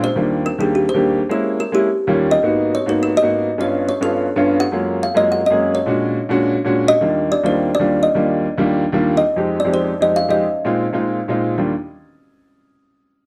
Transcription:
0.04 C5
0.16 D#2 G3 A#3 D4 F4
0.46 A#4
0.58 D#2 G3 A#3 D4 G4 G#4
0.75 G4
0.89 C5
0.94 D#2 G3 A#3 D4 G4
1.29 G#3 A#3 C#4 E4 A#4
1.60 A#4
1.72 G#3 A#3 C#4 E4 G4
2.07 D#2 G3 A#3 C#4 F4
2.31 D#5
2.43 G#2 A#3 B3 D#4 F#4
2.75 C#5
2.86 G#2 A#3 B3 D#4 F#4 B4
3.03 A#4
3.17 D#5
3.22 G#2 A#3 B3 D#4 F#4
3.58 G2 B3 C#4 D4 F4 C#5
3.89 C#5
4.01 G2 B3 C#4 D4 F4 A4
4.36 G2 B3 C#4 D4 F4
4.60 F#5
4.72 F#2 G#3 A#3 C#4 F4
5.03 F5
5.14 F#2 G#3 A#3 C#4 F4 D#5
5.32 F#5
5.46 F#2 D#5
5.50 G#3 A#3 C#4 G#4
5.75 C#5
5.86 A#2 G#3 C#4 D4 F#4
6.29 A#2 G#3 C#4 D4 F#4
6.65 A#2 G#3 C#4 D4 F#4
6.88 D#5
7.01 D#2 G3 A#3 D4 F4
7.32 D5
7.43 D#2 G3 A#3 D4 F4 C5
7.75 D5
7.79 D#2 G3 A#3 D4 F4
8.03 D#5
8.15 D#2 G3 A#3 D4 F4
8.58 D#2 G3 A#3 D4 F4
8.93 D#2 G3 A#3 D4 F4
9.17 D#5
9.36 F2 G#3 C4 D#4 G4
9.60 D5
9.65 F2 G#3 C4 D#4 G4
9.74 C5
10.00 F2 G#3 C4 D#4 G4 D#5
10.16 F5
10.29 F2 G#3 C4 D#4 G4 D#5
10.65 A#2 G#3 C4 D#4 F4
10.93 A#2 G#3 C4 D#4 F4
11.28 A#2 G#3 C4 D#4 F4
11.58 D#2 G3 A#3 D4 F4

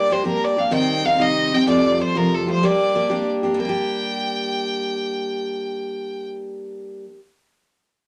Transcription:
Already playing: G4 D5
0.10 G3 A#3 D4 G4 C5
0.24 G3 A#3 D4 G4 A#4
0.44 D5
0.57 A#3 D4 G4 F5
0.71 C3 D#3 G3 C4 D#4 G5
1.04 D#3 G3 C4 D#4 F5
1.18 C3 D#3 G3 C4 D#4 D#5
1.52 G3 C4 D#4 G5
1.67 F2 C3 F3 G3 A3 F4 D5
1.97 F3 G3 A3 F4 D5
2.01 C5
2.15 F2 C3 F3 G3 A3 F4 A#4
2.35 A4
2.47 F3 G3 A3 F4
2.51 C5
2.63 G3 A#3 D4 G4 D5
2.95 G3 A#3 D4 G4
3.10 G3 A#3 D4 G4
3.43 A#3 D4 G4
3.54 G3
3.59 A#3 G5
3.65 D4 G4

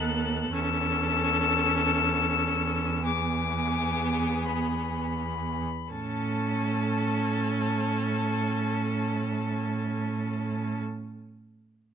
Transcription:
Already playing: D#2 B3 A4 F#6
0.53 E2 C#4 A4 E6
3.05 B3 G#4 D6
4.46 B5
5.92 A2 C#4 A4 A5

